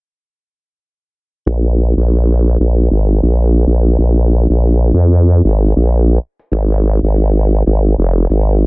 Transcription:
1.46 wobble bass A#1, closed hi-hat
1.97 wobble bass A#1, closed hi-hat
2.10 closed hi-hat
2.60 wobble bass A#1, closed hi-hat
2.73 closed hi-hat
2.91 wobble bass G#1
3.23 wobble bass A#1, closed hi-hat
3.36 closed hi-hat
3.67 wobble bass A#1
3.87 closed hi-hat
3.98 wobble bass A#1, closed hi-hat
4.50 wobble bass A#1, closed hi-hat
4.62 closed hi-hat
4.93 wobble bass F2
5.13 closed hi-hat
5.26 closed hi-hat
5.45 wobble bass G#1
5.76 wobble bass A#1, closed hi-hat
5.89 closed hi-hat
6.39 closed hi-hat
6.52 wobble bass G#1, closed hi-hat
7.03 wobble bass G#1
7.15 closed hi-hat
7.66 wobble bass G#1, closed hi-hat
7.79 closed hi-hat
7.98 wobble bass F1
8.30 wobble bass G#1, closed hi-hat
8.42 closed hi-hat

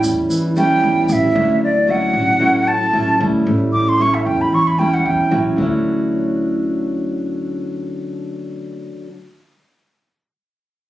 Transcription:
Already playing: nylon-string guitar A2 G3 C#4 E4
0.03 upright bass E2, shaker
0.30 nylon-string guitar E3, shaker
0.56 nylon-string guitar G3 C#4 E4, flute G5, shaker
0.83 upright bass E2
1.09 upright bass A1, flute E5, shaker
1.35 upright bass D2, nylon-string guitar D3 F#3 C#4 E4
1.64 flute D5
1.87 nylon-string guitar F#3 C#4 E4, flute F#5
2.13 upright bass A1
2.39 nylon-string guitar A2 F#3 C#4 E4
2.68 flute A5
2.93 upright bass A1, nylon-string guitar F#3 C#4 E4
3.20 upright bass D2, nylon-string guitar G3 C#4 E4
3.46 upright bass A1, nylon-string guitar A2
3.73 flute D6
3.89 flute C6
3.99 nylon-string guitar G3 C#4 E4, flute C#6
4.14 flute E5
4.26 upright bass E2, flute G5
4.41 flute B5
4.52 nylon-string guitar E3, flute C#6
4.67 flute B5
4.79 nylon-string guitar G3 C#4 E4, flute G5
4.94 flute F#5
5.05 upright bass E2, flute G5
5.31 upright bass A1, nylon-string guitar F#3 C#4 E4
5.56 upright bass D2, nylon-string guitar D3 F#3
5.60 nylon-string guitar C#4 E4

